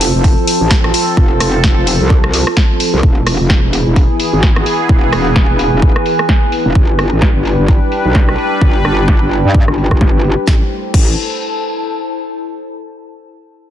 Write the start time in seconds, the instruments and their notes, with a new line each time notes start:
Already playing: wobble bass F1, analog synth pad F3 C4 A4, ambient pad F4 A4 C5 A5
0.01 open hi-hat
0.14 wobble bass F1
0.24 kick, open hi-hat
0.47 open hi-hat
0.61 wobble bass A1
0.71 kick, snare
0.84 cross-stick
0.94 open hi-hat
1.17 wobble bass F1, kick
1.40 wobble bass F1, cross-stick, open hi-hat
1.64 kick, snare
1.77 wobble bass F1
1.87 open hi-hat
2.00 wobble bass C2
2.10 kick
2.24 cross-stick
2.34 open hi-hat
2.47 cross-stick
2.57 kick, snare
2.80 open hi-hat
2.94 wobble bass C2
3.03 wobble bass E1, analog synth pad E3 B3 G#4, ambient pad E4, kick
3.23 ambient pad G#4, cross-stick, open hi-hat
3.40 wobble bass F1, ambient pad B4
3.50 kick, snare
3.63 wobble bass E1, ambient pad G#5
3.73 open hi-hat
3.87 wobble bass E1
3.96 kick, open hi-hat
4.20 open hi-hat
4.33 wobble bass G#1
4.43 kick, snare
4.56 cross-stick
4.66 open hi-hat
4.89 wobble bass E1, kick
5.13 wobble bass E1, cross-stick, open hi-hat
5.36 kick, snare
5.49 wobble bass E1
5.59 open hi-hat
5.73 wobble bass E1
5.82 kick
5.96 cross-stick
6.06 open hi-hat
6.19 cross-stick
6.29 kick, snare
6.52 open hi-hat
6.66 wobble bass E1
6.75 wobble bass G1, analog synth pad G3 D4 B4, ambient pad D4, kick
6.85 ambient pad G5
6.98 ambient pad G4, cross-stick, open hi-hat
7.12 wobble bass A1
7.22 kick, snare
7.35 wobble bass G1
7.45 open hi-hat
7.59 wobble bass G1
7.68 kick, open hi-hat
7.92 open hi-hat
8.05 wobble bass B1
8.15 kick, snare
8.29 cross-stick
8.38 open hi-hat
8.61 wobble bass G1, kick
8.85 wobble bass G1, cross-stick, open hi-hat
9.08 kick, snare
9.21 wobble bass G1
9.31 open hi-hat
9.45 wobble bass G2
9.54 kick
9.68 wobble bass G1, cross-stick
9.78 open hi-hat
9.91 wobble bass G1, kick, cross-stick
10.01 kick, snare
10.24 open hi-hat
10.47 wobble bass A1, ambient pad E4, kick, snare
10.56 ambient pad A4
10.63 ambient pad C5
10.69 ambient pad A5
10.94 wobble bass A1, kick, crash